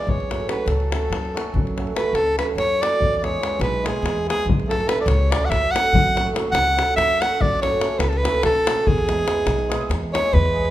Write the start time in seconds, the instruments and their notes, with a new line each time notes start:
Already playing: hammered dulcimer E3 G#3, alto saxophone D5
0.07 upright bass F#2, alto saxophone C#5, davul low
0.20 davul high
0.30 hammered dulcimer F#3 A3 C#4 F#4, davul high
0.40 davul high
0.49 hammered dulcimer F#3 A3 C#4 F#4, alto saxophone B4, davul high
0.66 upright bass C#2, alto saxophone A4, davul high
0.80 davul high
0.91 hammered dulcimer F#3 A3 C#4 F#4, davul high
1.02 davul high
1.10 upright bass F#2, davul high
1.25 davul high
1.34 hammered dulcimer F#3 A3 C#4 F#4, davul high
1.54 upright bass F#2, davul low
1.67 davul high
1.76 hammered dulcimer F#3 A3 C#4 F#4, davul high
1.87 davul high
1.94 hammered dulcimer F#3 A3 C#4 F#4, alto saxophone B4, davul high
2.13 upright bass C#2, alto saxophone A4, davul high
2.27 davul high
2.37 hammered dulcimer F#3 A3 C#4 F#4, alto saxophone B4, davul high
2.49 davul high
2.56 upright bass F#2, alto saxophone C#5, davul high
2.70 davul high
2.81 hammered dulcimer F#3 A3 C#4 F#4, alto saxophone D5, davul high
3.01 upright bass E2, davul low
3.13 alto saxophone D5, davul high
3.21 hammered dulcimer G#3 B3 E4 G#4, alto saxophone C#5, davul high
3.34 davul high
3.39 hammered dulcimer G#3 B3 E4 G#4
3.43 davul high
3.60 upright bass B1, alto saxophone B4, davul high
3.74 davul high
3.83 hammered dulcimer G#3 B3 E4 G#4, davul high
3.88 alto saxophone G#4
3.96 davul high
4.02 upright bass E2, davul high
4.18 davul high
4.26 hammered dulcimer G#3 B3 E4 G#4, alto saxophone G#4
4.30 davul high
4.46 upright bass F#2, davul low
4.60 davul high
4.68 hammered dulcimer A3 C#4 F#4 A4, alto saxophone A4, davul high
4.80 davul high
4.87 hammered dulcimer A3 C#4 F#4 A4, alto saxophone B4, davul high
4.98 alto saxophone D5, davul high
5.06 upright bass C#2, alto saxophone C#5, davul high
5.30 hammered dulcimer A3 C#4 F#4 A4, alto saxophone D5, davul high
5.45 alto saxophone F#5
5.49 upright bass F#2, alto saxophone E5, davul high, davul low
5.64 davul high
5.71 hammered dulcimer A3 C#4 F#4, alto saxophone F#5
5.75 hammered dulcimer A4, davul high
5.86 davul high
5.93 upright bass F#2, davul low
6.07 davul high
6.15 hammered dulcimer A3 C#4 F#4 A4, davul high
6.27 davul high
6.33 hammered dulcimer A3 C#4 F#4 A4, davul high
6.52 upright bass C#2, alto saxophone F#5, davul high
6.67 davul high
6.76 hammered dulcimer A3 C#4 F#4 A4, davul high
6.89 davul high
6.96 upright bass F#2, alto saxophone E5, davul high
7.10 davul high
7.20 hammered dulcimer A3 C#4 F#4 A4, alto saxophone F#5, davul high
7.41 upright bass F#2, alto saxophone D5, davul low
7.61 hammered dulcimer A3 C#4 F#4 A4, alto saxophone C#5, davul high
7.73 davul high
7.81 hammered dulcimer A3 C#4 F#4 A4, davul high
7.99 upright bass C#2, alto saxophone B4, davul high
8.09 alto saxophone A4
8.13 davul high
8.17 alto saxophone B4
8.23 hammered dulcimer A3 C#4 F#4 A4, davul high
8.35 davul high
8.43 upright bass B1, alto saxophone A4, davul high
8.55 davul high
8.66 hammered dulcimer A3 C#4 F#4 A4, davul high
8.87 upright bass E2, alto saxophone G#4, davul low
8.98 davul high
9.08 hammered dulcimer G#3 B3 E4 G#4, davul high
9.19 davul high
9.26 hammered dulcimer G#3 B3 E4 G#4, davul high
9.46 upright bass B1, davul high
9.59 davul high
9.68 hammered dulcimer G#3 B3 E4 G#4, davul high
9.81 davul high
9.89 upright bass E2, davul high
10.03 davul high
10.12 hammered dulcimer G#3 B3 E4 G#4, alto saxophone C#5, davul high
10.33 upright bass E2, alto saxophone B4, davul low
10.45 davul high
10.54 hammered dulcimer G#3 B3 E4 G#4
10.65 davul high